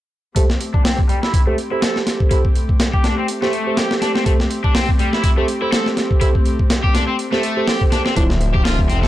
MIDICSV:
0, 0, Header, 1, 6, 480
1, 0, Start_track
1, 0, Key_signature, 0, "minor"
1, 0, Tempo, 487805
1, 357, Time_signature, 4, 2, 24, 8
1, 8934, End_track
2, 0, Start_track
2, 0, Title_t, "Tine electric piano"
2, 0, Program_c, 0, 4
2, 355, Note_on_c, 0, 67, 78
2, 357, Note_on_c, 0, 69, 71
2, 357, Note_on_c, 0, 72, 88
2, 466, Note_off_c, 0, 67, 0
2, 467, Note_off_c, 0, 69, 0
2, 467, Note_off_c, 0, 72, 0
2, 1448, Note_on_c, 0, 67, 90
2, 1448, Note_on_c, 0, 72, 99
2, 1449, Note_on_c, 0, 69, 84
2, 1535, Note_off_c, 0, 67, 0
2, 1535, Note_off_c, 0, 72, 0
2, 1536, Note_off_c, 0, 69, 0
2, 1688, Note_on_c, 0, 72, 80
2, 1689, Note_on_c, 0, 69, 64
2, 1690, Note_on_c, 0, 67, 72
2, 2250, Note_off_c, 0, 69, 0
2, 2250, Note_off_c, 0, 72, 0
2, 2251, Note_off_c, 0, 67, 0
2, 2273, Note_on_c, 0, 69, 73
2, 2273, Note_on_c, 0, 72, 89
2, 2274, Note_on_c, 0, 67, 80
2, 2385, Note_off_c, 0, 69, 0
2, 2385, Note_off_c, 0, 72, 0
2, 2386, Note_off_c, 0, 67, 0
2, 3372, Note_on_c, 0, 67, 94
2, 3372, Note_on_c, 0, 69, 82
2, 3372, Note_on_c, 0, 72, 101
2, 3457, Note_off_c, 0, 67, 0
2, 3457, Note_off_c, 0, 72, 0
2, 3458, Note_off_c, 0, 69, 0
2, 3611, Note_on_c, 0, 72, 78
2, 3612, Note_on_c, 0, 67, 72
2, 3612, Note_on_c, 0, 69, 66
2, 4171, Note_off_c, 0, 72, 0
2, 4172, Note_off_c, 0, 67, 0
2, 4172, Note_off_c, 0, 69, 0
2, 4194, Note_on_c, 0, 72, 88
2, 4195, Note_on_c, 0, 67, 79
2, 4195, Note_on_c, 0, 69, 73
2, 4306, Note_off_c, 0, 67, 0
2, 4306, Note_off_c, 0, 69, 0
2, 4306, Note_off_c, 0, 72, 0
2, 5288, Note_on_c, 0, 67, 90
2, 5289, Note_on_c, 0, 69, 84
2, 5289, Note_on_c, 0, 72, 101
2, 5375, Note_off_c, 0, 67, 0
2, 5376, Note_off_c, 0, 69, 0
2, 5376, Note_off_c, 0, 72, 0
2, 5528, Note_on_c, 0, 67, 72
2, 5528, Note_on_c, 0, 69, 66
2, 5528, Note_on_c, 0, 72, 80
2, 6090, Note_off_c, 0, 67, 0
2, 6090, Note_off_c, 0, 69, 0
2, 6090, Note_off_c, 0, 72, 0
2, 6116, Note_on_c, 0, 72, 86
2, 6118, Note_on_c, 0, 67, 81
2, 6118, Note_on_c, 0, 69, 73
2, 6226, Note_off_c, 0, 72, 0
2, 6227, Note_off_c, 0, 67, 0
2, 6227, Note_off_c, 0, 69, 0
2, 7208, Note_on_c, 0, 67, 94
2, 7209, Note_on_c, 0, 69, 84
2, 7209, Note_on_c, 0, 72, 102
2, 7296, Note_off_c, 0, 67, 0
2, 7296, Note_off_c, 0, 69, 0
2, 7296, Note_off_c, 0, 72, 0
2, 7449, Note_on_c, 0, 69, 66
2, 7449, Note_on_c, 0, 72, 80
2, 7450, Note_on_c, 0, 67, 72
2, 8010, Note_off_c, 0, 69, 0
2, 8011, Note_off_c, 0, 67, 0
2, 8011, Note_off_c, 0, 72, 0
2, 8036, Note_on_c, 0, 65, 71
2, 8036, Note_on_c, 0, 72, 89
2, 8037, Note_on_c, 0, 64, 81
2, 8147, Note_off_c, 0, 64, 0
2, 8147, Note_off_c, 0, 65, 0
2, 8147, Note_off_c, 0, 72, 0
2, 8934, End_track
3, 0, Start_track
3, 0, Title_t, "Overdriven electric guitar"
3, 0, Program_c, 1, 29
3, 355, Note_on_c, 1, 57, 76
3, 406, Note_off_c, 1, 57, 0
3, 727, Note_on_c, 1, 62, 93
3, 794, Note_off_c, 1, 62, 0
3, 833, Note_on_c, 1, 60, 94
3, 960, Note_off_c, 1, 60, 0
3, 1073, Note_on_c, 1, 55, 71
3, 1158, Note_off_c, 1, 55, 0
3, 1209, Note_on_c, 1, 64, 71
3, 1302, Note_off_c, 1, 64, 0
3, 1314, Note_on_c, 1, 64, 76
3, 1365, Note_off_c, 1, 64, 0
3, 1448, Note_on_c, 1, 57, 71
3, 1515, Note_off_c, 1, 57, 0
3, 1690, Note_on_c, 1, 64, 95
3, 1786, Note_off_c, 1, 64, 0
3, 1796, Note_on_c, 1, 69, 78
3, 1921, Note_off_c, 1, 69, 0
3, 2273, Note_on_c, 1, 64, 76
3, 2325, Note_off_c, 1, 64, 0
3, 2888, Note_on_c, 1, 67, 72
3, 2987, Note_off_c, 1, 67, 0
3, 2995, Note_on_c, 1, 62, 72
3, 3079, Note_off_c, 1, 62, 0
3, 3129, Note_on_c, 1, 60, 93
3, 3195, Note_off_c, 1, 60, 0
3, 3371, Note_on_c, 1, 57, 70
3, 3706, Note_off_c, 1, 57, 0
3, 3715, Note_on_c, 1, 67, 96
3, 3841, Note_off_c, 1, 67, 0
3, 3954, Note_on_c, 1, 62, 70
3, 4038, Note_off_c, 1, 62, 0
3, 4087, Note_on_c, 1, 60, 98
3, 4154, Note_off_c, 1, 60, 0
3, 4193, Note_on_c, 1, 57, 76
3, 4245, Note_off_c, 1, 57, 0
3, 4565, Note_on_c, 1, 62, 97
3, 4633, Note_off_c, 1, 62, 0
3, 4671, Note_on_c, 1, 60, 95
3, 4799, Note_off_c, 1, 60, 0
3, 4913, Note_on_c, 1, 55, 73
3, 4998, Note_off_c, 1, 55, 0
3, 5048, Note_on_c, 1, 64, 71
3, 5141, Note_off_c, 1, 64, 0
3, 5152, Note_on_c, 1, 64, 77
3, 5204, Note_off_c, 1, 64, 0
3, 5288, Note_on_c, 1, 57, 71
3, 5355, Note_off_c, 1, 57, 0
3, 5529, Note_on_c, 1, 64, 98
3, 5625, Note_off_c, 1, 64, 0
3, 5633, Note_on_c, 1, 69, 80
3, 5759, Note_off_c, 1, 69, 0
3, 6110, Note_on_c, 1, 64, 78
3, 6163, Note_off_c, 1, 64, 0
3, 6728, Note_on_c, 1, 67, 72
3, 6827, Note_off_c, 1, 67, 0
3, 6833, Note_on_c, 1, 62, 73
3, 6918, Note_off_c, 1, 62, 0
3, 6968, Note_on_c, 1, 60, 96
3, 7034, Note_off_c, 1, 60, 0
3, 7208, Note_on_c, 1, 57, 71
3, 7545, Note_off_c, 1, 57, 0
3, 7555, Note_on_c, 1, 67, 97
3, 7681, Note_off_c, 1, 67, 0
3, 7795, Note_on_c, 1, 62, 71
3, 7879, Note_off_c, 1, 62, 0
3, 7930, Note_on_c, 1, 60, 95
3, 7996, Note_off_c, 1, 60, 0
3, 8035, Note_on_c, 1, 62, 78
3, 8086, Note_off_c, 1, 62, 0
3, 8408, Note_on_c, 1, 67, 98
3, 8475, Note_off_c, 1, 67, 0
3, 8513, Note_on_c, 1, 65, 93
3, 8639, Note_off_c, 1, 65, 0
3, 8755, Note_on_c, 1, 60, 72
3, 8839, Note_off_c, 1, 60, 0
3, 8887, Note_on_c, 1, 69, 74
3, 8934, Note_off_c, 1, 69, 0
3, 8934, End_track
4, 0, Start_track
4, 0, Title_t, "String section"
4, 0, Program_c, 2, 48
4, 358, Note_on_c, 2, 57, 73
4, 361, Note_on_c, 2, 60, 66
4, 361, Note_on_c, 2, 67, 80
4, 7998, Note_off_c, 2, 57, 0
4, 7999, Note_off_c, 2, 67, 0
4, 8040, Note_on_c, 2, 76, 69
4, 8042, Note_on_c, 2, 50, 74
4, 8042, Note_on_c, 2, 53, 84
4, 8934, Note_off_c, 2, 50, 0
4, 8934, Note_off_c, 2, 53, 0
4, 8934, Note_off_c, 2, 60, 0
4, 8934, Note_off_c, 2, 76, 0
4, 8934, End_track
5, 0, Start_track
5, 0, Title_t, "Detuned saw bass"
5, 0, Program_c, 3, 39
5, 8034, Note_on_c, 3, 26, 95
5, 8753, Note_on_c, 3, 29, 86
5, 8768, Note_off_c, 3, 26, 0
5, 8934, Note_off_c, 3, 29, 0
5, 8934, End_track
6, 0, Start_track
6, 0, Title_t, "Drums"
6, 353, Note_on_c, 9, 42, 83
6, 354, Note_on_c, 9, 36, 106
6, 452, Note_off_c, 9, 36, 0
6, 452, Note_off_c, 9, 42, 0
6, 489, Note_on_c, 9, 38, 46
6, 588, Note_off_c, 9, 38, 0
6, 595, Note_on_c, 9, 42, 64
6, 694, Note_off_c, 9, 42, 0
6, 729, Note_on_c, 9, 36, 86
6, 827, Note_off_c, 9, 36, 0
6, 836, Note_on_c, 9, 38, 110
6, 836, Note_on_c, 9, 46, 74
6, 935, Note_off_c, 9, 38, 0
6, 935, Note_off_c, 9, 46, 0
6, 969, Note_on_c, 9, 36, 91
6, 1068, Note_off_c, 9, 36, 0
6, 1075, Note_on_c, 9, 42, 63
6, 1173, Note_off_c, 9, 42, 0
6, 1212, Note_on_c, 9, 38, 47
6, 1310, Note_off_c, 9, 38, 0
6, 1314, Note_on_c, 9, 36, 101
6, 1316, Note_on_c, 9, 42, 81
6, 1413, Note_off_c, 9, 36, 0
6, 1415, Note_off_c, 9, 42, 0
6, 1556, Note_on_c, 9, 42, 66
6, 1654, Note_off_c, 9, 42, 0
6, 1794, Note_on_c, 9, 38, 110
6, 1794, Note_on_c, 9, 42, 84
6, 1892, Note_off_c, 9, 38, 0
6, 1892, Note_off_c, 9, 42, 0
6, 1928, Note_on_c, 9, 38, 41
6, 2027, Note_off_c, 9, 38, 0
6, 2034, Note_on_c, 9, 38, 49
6, 2034, Note_on_c, 9, 42, 67
6, 2133, Note_off_c, 9, 38, 0
6, 2133, Note_off_c, 9, 42, 0
6, 2168, Note_on_c, 9, 36, 93
6, 2267, Note_off_c, 9, 36, 0
6, 2271, Note_on_c, 9, 42, 86
6, 2273, Note_on_c, 9, 36, 103
6, 2370, Note_off_c, 9, 42, 0
6, 2371, Note_off_c, 9, 36, 0
6, 2408, Note_on_c, 9, 36, 93
6, 2507, Note_off_c, 9, 36, 0
6, 2514, Note_on_c, 9, 42, 65
6, 2612, Note_off_c, 9, 42, 0
6, 2648, Note_on_c, 9, 36, 88
6, 2746, Note_off_c, 9, 36, 0
6, 2753, Note_on_c, 9, 38, 109
6, 2753, Note_on_c, 9, 42, 81
6, 2851, Note_off_c, 9, 38, 0
6, 2851, Note_off_c, 9, 42, 0
6, 2888, Note_on_c, 9, 36, 90
6, 2986, Note_off_c, 9, 36, 0
6, 2991, Note_on_c, 9, 38, 46
6, 2991, Note_on_c, 9, 42, 66
6, 3090, Note_off_c, 9, 38, 0
6, 3090, Note_off_c, 9, 42, 0
6, 3231, Note_on_c, 9, 42, 82
6, 3329, Note_off_c, 9, 42, 0
6, 3368, Note_on_c, 9, 38, 38
6, 3466, Note_off_c, 9, 38, 0
6, 3473, Note_on_c, 9, 42, 63
6, 3571, Note_off_c, 9, 42, 0
6, 3712, Note_on_c, 9, 38, 109
6, 3712, Note_on_c, 9, 42, 85
6, 3810, Note_off_c, 9, 38, 0
6, 3810, Note_off_c, 9, 42, 0
6, 3847, Note_on_c, 9, 38, 52
6, 3945, Note_off_c, 9, 38, 0
6, 3953, Note_on_c, 9, 38, 44
6, 3953, Note_on_c, 9, 42, 66
6, 4052, Note_off_c, 9, 38, 0
6, 4052, Note_off_c, 9, 42, 0
6, 4089, Note_on_c, 9, 38, 47
6, 4187, Note_off_c, 9, 38, 0
6, 4193, Note_on_c, 9, 36, 106
6, 4193, Note_on_c, 9, 42, 85
6, 4291, Note_off_c, 9, 42, 0
6, 4292, Note_off_c, 9, 36, 0
6, 4329, Note_on_c, 9, 38, 46
6, 4427, Note_off_c, 9, 38, 0
6, 4433, Note_on_c, 9, 42, 66
6, 4532, Note_off_c, 9, 42, 0
6, 4568, Note_on_c, 9, 36, 87
6, 4666, Note_off_c, 9, 36, 0
6, 4672, Note_on_c, 9, 38, 109
6, 4672, Note_on_c, 9, 46, 76
6, 4770, Note_off_c, 9, 38, 0
6, 4770, Note_off_c, 9, 46, 0
6, 4808, Note_on_c, 9, 36, 90
6, 4906, Note_off_c, 9, 36, 0
6, 4912, Note_on_c, 9, 42, 65
6, 5011, Note_off_c, 9, 42, 0
6, 5048, Note_on_c, 9, 38, 47
6, 5147, Note_off_c, 9, 38, 0
6, 5152, Note_on_c, 9, 42, 84
6, 5154, Note_on_c, 9, 36, 102
6, 5250, Note_off_c, 9, 42, 0
6, 5252, Note_off_c, 9, 36, 0
6, 5394, Note_on_c, 9, 42, 65
6, 5493, Note_off_c, 9, 42, 0
6, 5633, Note_on_c, 9, 38, 112
6, 5633, Note_on_c, 9, 42, 84
6, 5732, Note_off_c, 9, 38, 0
6, 5732, Note_off_c, 9, 42, 0
6, 5769, Note_on_c, 9, 38, 43
6, 5867, Note_off_c, 9, 38, 0
6, 5874, Note_on_c, 9, 38, 48
6, 5874, Note_on_c, 9, 42, 68
6, 5973, Note_off_c, 9, 38, 0
6, 5973, Note_off_c, 9, 42, 0
6, 6009, Note_on_c, 9, 36, 95
6, 6108, Note_off_c, 9, 36, 0
6, 6112, Note_on_c, 9, 42, 85
6, 6114, Note_on_c, 9, 36, 105
6, 6211, Note_off_c, 9, 42, 0
6, 6212, Note_off_c, 9, 36, 0
6, 6249, Note_on_c, 9, 36, 95
6, 6347, Note_off_c, 9, 36, 0
6, 6352, Note_on_c, 9, 42, 67
6, 6450, Note_off_c, 9, 42, 0
6, 6489, Note_on_c, 9, 36, 89
6, 6587, Note_off_c, 9, 36, 0
6, 6594, Note_on_c, 9, 38, 109
6, 6594, Note_on_c, 9, 42, 84
6, 6692, Note_off_c, 9, 38, 0
6, 6692, Note_off_c, 9, 42, 0
6, 6730, Note_on_c, 9, 36, 92
6, 6828, Note_off_c, 9, 36, 0
6, 6835, Note_on_c, 9, 38, 46
6, 6835, Note_on_c, 9, 42, 65
6, 6934, Note_off_c, 9, 38, 0
6, 6934, Note_off_c, 9, 42, 0
6, 7075, Note_on_c, 9, 42, 83
6, 7173, Note_off_c, 9, 42, 0
6, 7209, Note_on_c, 9, 38, 36
6, 7307, Note_off_c, 9, 38, 0
6, 7313, Note_on_c, 9, 42, 65
6, 7412, Note_off_c, 9, 42, 0
6, 7552, Note_on_c, 9, 38, 102
6, 7552, Note_on_c, 9, 46, 70
6, 7651, Note_off_c, 9, 38, 0
6, 7651, Note_off_c, 9, 46, 0
6, 7689, Note_on_c, 9, 36, 79
6, 7787, Note_off_c, 9, 36, 0
6, 7793, Note_on_c, 9, 38, 46
6, 7793, Note_on_c, 9, 42, 66
6, 7892, Note_off_c, 9, 38, 0
6, 7892, Note_off_c, 9, 42, 0
6, 7928, Note_on_c, 9, 38, 47
6, 8026, Note_off_c, 9, 38, 0
6, 8034, Note_on_c, 9, 36, 109
6, 8034, Note_on_c, 9, 42, 85
6, 8132, Note_off_c, 9, 42, 0
6, 8133, Note_off_c, 9, 36, 0
6, 8168, Note_on_c, 9, 38, 48
6, 8266, Note_off_c, 9, 38, 0
6, 8272, Note_on_c, 9, 42, 66
6, 8371, Note_off_c, 9, 42, 0
6, 8409, Note_on_c, 9, 36, 90
6, 8507, Note_off_c, 9, 36, 0
6, 8514, Note_on_c, 9, 38, 109
6, 8514, Note_on_c, 9, 46, 76
6, 8612, Note_off_c, 9, 38, 0
6, 8612, Note_off_c, 9, 46, 0
6, 8649, Note_on_c, 9, 36, 89
6, 8747, Note_off_c, 9, 36, 0
6, 8753, Note_on_c, 9, 42, 65
6, 8851, Note_off_c, 9, 42, 0
6, 8889, Note_on_c, 9, 38, 46
6, 8934, Note_off_c, 9, 38, 0
6, 8934, End_track
0, 0, End_of_file